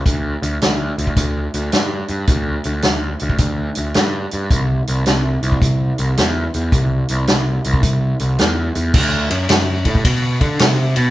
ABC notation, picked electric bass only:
X:1
M:4/4
L:1/8
Q:"Swing" 1/4=108
K:Dmix
V:1 name="Picked electric bass" clef=bass
D,, D,, D,, D,, D,, D,, G,, G,, | D,, D,, D,, D,, D,, D,, G,, G,, | C,, C,, C,, C,, C,, C,, E,, E,, | C,, C,, C,, C,, C,, C,, E,, E,, |
D,, F,, F,, A,, B,, D, C, B,, |]